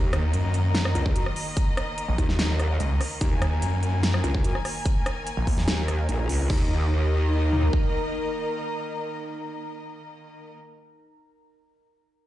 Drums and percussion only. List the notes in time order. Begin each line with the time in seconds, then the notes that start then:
0.13 cross-stick, closed hi-hat
0.33 closed hi-hat
0.54 closed hi-hat
0.75 snare, closed hi-hat
0.85 cross-stick
0.95 closed hi-hat
1.06 kick
1.16 closed hi-hat
1.26 cross-stick
1.36 open hi-hat
1.57 kick, closed hi-hat
1.77 cross-stick, closed hi-hat
1.98 closed hi-hat
2.18 kick, closed hi-hat
2.29 snare
2.39 snare, closed hi-hat
2.59 cross-stick, closed hi-hat
2.80 closed hi-hat
3.01 cross-stick, open hi-hat
3.21 kick, closed hi-hat
3.42 cross-stick, closed hi-hat
3.62 closed hi-hat
3.83 closed hi-hat
4.03 snare, closed hi-hat
4.14 cross-stick
4.24 closed hi-hat
4.35 kick
4.44 closed hi-hat
4.55 cross-stick
4.65 cross-stick, open hi-hat
4.86 kick, closed hi-hat
5.06 cross-stick, closed hi-hat
5.27 closed hi-hat
5.47 kick, open hi-hat
5.58 snare
5.68 snare, closed hi-hat
5.88 cross-stick, closed hi-hat
6.09 closed hi-hat
6.29 open hi-hat
6.50 kick, crash
7.53 mid tom
7.63 floor tom
7.73 kick